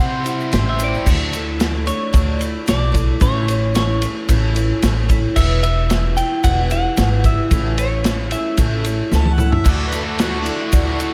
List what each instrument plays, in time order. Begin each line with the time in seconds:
Already playing: overdriven electric guitar C3 G3 C4 E4, twelve-string acoustic guitar C4, clean electric guitar F#5
0.00 upright bass C3, twelve-string acoustic guitar E4 G4 C5, overdriven electric guitar C5
0.24 twelve-string acoustic guitar C4 E4 G4 C5, overdriven electric guitar E4, ride, shaker
0.40 shaker
0.52 upright bass A1, twelve-string acoustic guitar C3 G3 C4 E4 G4 C5, overdriven electric guitar C5, snare, ride, shaker
0.69 clean electric guitar E5
0.79 twelve-string acoustic guitar C4 E4 G4 C5, overdriven electric guitar G4, ride, shaker
0.84 clean electric guitar D5
0.94 shaker
1.06 upright bass D2, twelve-string acoustic guitar D3 F#3 A3 D4 E4, kick, crash, shaker
1.33 twelve-string acoustic guitar A3 D4 E4, ride, shaker
1.60 twelve-string acoustic guitar F#3 A3 D4 E4, snare, ride, shaker
1.86 twelve-string acoustic guitar A3 D4 E4, clean electric guitar C#5, ride, shaker
2.13 upright bass D2, twelve-string acoustic guitar D3 F#3 A3 D4 E4, kick, ride, shaker
2.39 twelve-string acoustic guitar A3 D4 E4, ride, shaker
2.66 upright bass B1, twelve-string acoustic guitar F#3 A3 D4 E4, clean electric guitar D5, snare, ride, shaker
2.92 twelve-string acoustic guitar A3 D4 E4, kick, ride, shaker
3.20 upright bass A1, twelve-string acoustic guitar A2 E3 A3 C#4 E4, clean electric guitar C#5, kick, ride, shaker
3.48 twelve-string acoustic guitar A3 C#4 E4, ride, shaker
3.74 twelve-string acoustic guitar E3 A3 C#4 E4, clean electric guitar C#5, snare, ride, shaker
4.02 twelve-string acoustic guitar A3 C#4 E4, ride, shaker
4.29 upright bass A1, twelve-string acoustic guitar A2 E3 A3 C#4 E4, kick, ride, shaker
4.55 twelve-string acoustic guitar A3 C#4 E4, ride, shaker
4.82 upright bass A1, twelve-string acoustic guitar E3 A3 C#4 E4, snare, ride, shaker
5.09 twelve-string acoustic guitar A3 C#4 E4, kick, ride, shaker
5.36 upright bass E1, twelve-string acoustic guitar E2 B2 E3 G3 B3 E4, clean electric guitar E5, kick, crash, shaker
5.63 twelve-string acoustic guitar E3 G3 B3 E4, clean electric guitar E5, ride, shaker
5.89 twelve-string acoustic guitar E3 G3 B3 E4, snare, ride, shaker
6.17 twelve-string acoustic guitar E3 G3 B3 E4, clean electric guitar G5, ride, shaker
6.44 upright bass E1, twelve-string acoustic guitar E2 B2 E3 G3 B3 E4, clean electric guitar F#5, kick, ride, shaker
6.70 twelve-string acoustic guitar E3 G3 B3 E4, clean electric guitar F#5, ride, shaker
6.97 upright bass G#1, twelve-string acoustic guitar E3 G3 B3 E4, snare, ride, shaker
7.23 twelve-string acoustic guitar E3 G3 B3 E4, clean electric guitar E5, kick, ride, shaker
7.51 upright bass A1, twelve-string acoustic guitar A2 E3 A3 C#4 E4, kick, ride, shaker
7.77 twelve-string acoustic guitar A3 C#4 E4, clean electric guitar C#5, ride, shaker
8.04 twelve-string acoustic guitar E3 A3 C#4 E4, snare, ride, shaker
8.31 twelve-string acoustic guitar A3 C#4 E4, clean electric guitar E5, ride, shaker
8.57 upright bass A1, twelve-string acoustic guitar A2 E3 A3 C#4 E4, kick, ride, shaker
8.84 twelve-string acoustic guitar A3 C#4 E4, ride, shaker
9.11 upright bass C#2, twelve-string acoustic guitar E3 A3 C#4 E4, harmonica A5, snare, shaker
9.25 high tom
9.34 twelve-string acoustic guitar E4, harmonica F#5
9.38 twelve-string acoustic guitar A3 C#4, mid tom, shaker
9.51 harmonica E5, floor tom
9.64 upright bass D2, overdriven electric guitar D3 A3 D4 F#4, twelve-string acoustic guitar D3 F#3 A3 D4 E4, kick, crash, shaker
9.69 harmonica D5
9.86 harmonica B4
9.92 overdriven electric guitar D3 A3 D4 F#4, twelve-string acoustic guitar A3 D4 E4, ride, shaker
10.03 overdriven electric guitar D4 F#4, harmonica A4
10.08 overdriven electric guitar A3
10.18 overdriven electric guitar D3 A3 D4 F#4, twelve-string acoustic guitar F#3 A3 D4 E4, snare, ride, shaker
10.22 harmonica F#4
10.40 harmonica D4
10.45 overdriven electric guitar D3 A3 D4 F#4, twelve-string acoustic guitar A3 D4 E4, ride, shaker
10.59 overdriven electric guitar A3 D4 F#4
10.72 upright bass D2, twelve-string acoustic guitar D3 F#3 A3 D4 E4, kick, ride, shaker
10.85 overdriven electric guitar A3 D4 F#4
10.99 overdriven electric guitar D3 A3 D4 F#4, twelve-string acoustic guitar A3 D4 E4, ride, shaker